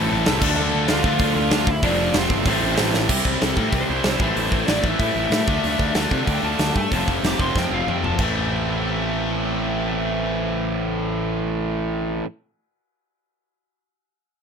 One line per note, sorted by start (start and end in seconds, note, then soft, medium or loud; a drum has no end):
0.00 0.25 A2 medium
0.00 0.41 A2 medium
0.00 0.25 E3 loud
0.00 0.41 E3 loud
0.00 0.27 A3 loud
0.00 0.43 A3 loud
0.00 0.26 C4 loud
0.00 0.26 E4 loud
0.00 0.23 A4 medium
0.00 0.23 A5 loud
0.12 0.24 A1 loud
0.26 0.42 C2 loud
0.26 0.41 A2 medium
0.26 0.40 E3 medium
0.26 0.41 A3 medium
0.26 0.42 C4 medium
0.26 0.42 E4 medium
0.26 0.48 A4 medium
0.26 0.48 A5 loud
0.26 snare loud
0.26 open hi-hat medium
0.40 0.55 D2 loud
0.40 1.50 D3 medium
0.40 1.04 D3 medium
0.40 1.51 A3 loud
0.40 1.05 A3 loud
0.40 1.51 D4 loud
0.40 1.04 D4 loud
0.40 1.52 F4 loud
0.40 kick loud
0.40 crash loud
0.56 0.70 D2 loud
0.56 0.87 A4 medium
0.56 0.89 A5 loud
0.74 0.86 D2 loud
0.88 1.02 D2 loud
0.88 1.18 F4 medium
0.88 1.18 F5 medium
0.88 snare loud
0.88 open hi-hat medium
1.04 1.17 D2 medium
1.04 1.68 D3 medium
1.04 1.67 A3 medium
1.04 1.67 D4 loud
1.04 kick loud
1.19 1.33 D2 medium
1.19 1.33 F4 medium
1.19 1.34 F5 medium
1.19 kick loud
1.19 open hi-hat medium
1.34 1.49 D2 loud
1.34 1.50 F4 medium
1.34 1.50 F5 medium
1.51 1.64 D2 loud
1.51 1.66 D3 medium
1.51 1.67 A3 medium
1.51 1.67 D4 medium
1.51 1.67 F4 medium
1.51 1.68 F4 medium
1.51 1.68 F5 medium
1.51 snare loud
1.51 open hi-hat medium
1.67 1.80 D2 loud
1.67 1.84 E4 medium
1.67 kick loud
1.71 1.83 E5 loud
1.83 2.09 F1 loud
1.83 2.45 F2 loud
1.83 2.46 C3 loud
1.83 2.46 F3 loud
1.83 2.47 F3 medium
1.83 2.46 A3 loud
1.83 2.47 C4 loud
1.83 2.12 D4 medium
1.83 2.13 D5 medium
1.83 kick loud
1.83 open hi-hat medium
1.87 2.47 F4 loud
2.14 2.28 F1 medium
2.14 2.45 C4 medium
2.14 snare loud
2.14 open hi-hat medium
2.18 2.48 C5 medium
2.29 2.43 G1 loud
2.29 kick loud
2.46 2.59 A1 medium
2.46 3.09 A2 loud
2.46 3.09 E3 loud
2.46 3.10 A3 loud
2.46 2.91 C4 medium
2.46 3.10 C4 loud
2.46 3.10 E4 loud
2.46 2.92 C5 medium
2.46 kick loud
2.46 open hi-hat medium
2.62 2.75 A1 medium
2.77 2.92 A1 loud
2.77 snare loud
2.77 open hi-hat medium
2.94 3.07 A1 medium
2.94 snare medium
3.09 3.19 C2 medium
3.09 3.56 C3 medium
3.09 3.88 C3 medium
3.09 3.88 E3 medium
3.09 3.56 G3 medium
3.09 3.88 G3 loud
3.09 3.88 C4 loud
3.09 3.55 C4 medium
3.09 3.88 E4 medium
3.09 kick loud
3.09 crash loud
3.25 3.35 C2 medium
3.25 kick medium
3.41 3.52 C2 medium
3.41 3.57 A4 loud
3.41 snare loud
3.41 open hi-hat medium
3.57 3.67 A2 medium
3.57 4.21 C3 medium
3.57 4.20 G3 medium
3.57 4.20 C4 medium
3.57 3.73 A4 medium
3.57 kick medium
3.72 3.83 C2 medium
3.72 4.20 C5 medium
3.72 kick medium
3.72 open hi-hat medium
3.89 4.00 C2 medium
3.89 4.03 C3 medium
3.89 4.04 E3 medium
3.89 4.05 G3 medium
3.89 4.04 C4 medium
3.89 4.04 E4 medium
4.04 4.15 C2 loud
4.04 4.20 C3 medium
4.04 4.20 E3 medium
4.04 4.20 G3 medium
4.04 4.21 C4 medium
4.04 snare loud
4.04 open hi-hat medium
4.08 4.21 E4 medium
4.20 4.30 A1 medium
4.20 4.99 A2 medium
4.20 4.67 A2 medium
4.20 4.99 E3 medium
4.20 4.68 E3 medium
4.20 5.01 A3 medium
4.20 4.70 A3 medium
4.20 5.00 C4 medium
4.20 5.00 E4 loud
4.20 4.69 C5 medium
4.20 kick loud
4.36 4.46 A1 medium
4.36 open hi-hat medium
4.51 4.62 A1 medium
4.51 kick medium
4.67 4.79 A1 medium
4.67 5.46 A2 medium
4.67 5.47 E3 medium
4.67 5.48 A3 medium
4.67 4.85 D5 medium
4.67 snare loud
4.67 open hi-hat soft
4.83 4.93 A1 medium
4.83 4.98 E5 medium
4.83 kick medium
4.99 5.10 A2 medium
4.99 5.15 A2 medium
4.99 5.16 E3 medium
4.99 5.17 A3 medium
4.99 5.16 C4 medium
4.99 5.15 E4 medium
4.99 5.93 E5 medium
4.99 kick medium
4.99 open hi-hat medium
5.15 5.26 A1 medium
5.15 5.48 A2 medium
5.15 5.47 E3 medium
5.15 5.48 A3 medium
5.15 5.48 C4 medium
5.15 5.47 E4 medium
5.30 5.41 A2 medium
5.30 snare loud
5.30 open hi-hat medium
5.47 5.58 D2 medium
5.47 5.94 D3 medium
5.47 6.26 D3 medium
5.47 6.28 A3 medium
5.47 5.96 A3 medium
5.47 6.27 D4 medium
5.47 5.96 D4 loud
5.47 6.28 F4 loud
5.47 kick loud
5.64 5.74 D2 medium
5.64 open hi-hat medium
5.79 5.89 D2 medium
5.79 kick medium
5.95 6.05 D2 medium
5.95 6.74 D3 medium
5.95 6.93 A3 medium
5.95 6.75 D4 medium
5.95 snare loud
5.95 open hi-hat medium
6.11 6.21 C3 medium
6.11 kick medium
6.27 6.38 D2 medium
6.27 6.43 D3 medium
6.27 6.45 A3 medium
6.27 6.44 D4 medium
6.27 6.42 F4 medium
6.27 6.45 G5 medium
6.27 kick medium
6.27 open hi-hat medium
6.43 6.53 D2 medium
6.43 6.76 D3 medium
6.43 6.93 A3 medium
6.43 6.75 D4 medium
6.43 6.75 F4 medium
6.43 6.75 A5 loud
6.59 6.69 D2 medium
6.59 snare medium
6.59 open hi-hat medium
6.76 6.86 G2 medium
6.76 6.92 A5 medium
6.76 kick medium
6.91 7.02 F1 medium
6.91 7.38 F2 medium
6.91 7.39 C3 medium
6.91 7.71 F3 medium
6.91 7.38 F3 medium
6.91 7.71 A3 medium
6.91 7.71 C4 medium
6.91 7.08 A5 loud
6.91 kick medium
6.91 open hi-hat medium
6.95 7.69 F4 medium
7.08 7.18 F1 medium
7.08 kick medium
7.23 7.33 F1 medium
7.23 7.41 D6 loud
7.23 snare loud
7.23 open hi-hat soft
7.39 7.49 F1 medium
7.39 8.19 F2 medium
7.39 8.18 C3 medium
7.39 8.18 F3 medium
7.39 7.56 C6 medium
7.39 kick medium
7.55 7.65 F2 medium
7.55 7.72 G5 medium
7.55 kick loud
7.55 snare medium
7.71 7.81 F1 medium
7.71 7.86 F3 medium
7.71 7.87 A3 medium
7.71 7.87 C4 medium
7.71 7.86 F4 medium
7.71 7.88 F5 medium
7.87 7.97 F2 medium
7.87 8.18 F3 medium
7.87 8.19 A3 medium
7.87 8.19 C4 medium
7.87 8.20 F4 medium
7.87 8.04 G5 medium
7.87 mid tom medium
8.04 8.14 F1 medium
8.04 8.19 A5 loud
8.04 floor tom medium
8.18 12.21 A1 medium
8.18 12.24 A2 medium
8.18 12.25 A2 medium
8.18 12.25 E3 medium
8.18 12.26 E3 medium
8.18 12.26 A3 medium
8.18 kick loud
8.18 crash medium
8.22 12.26 A3 medium
8.22 12.27 C4 medium
8.22 12.27 E4 medium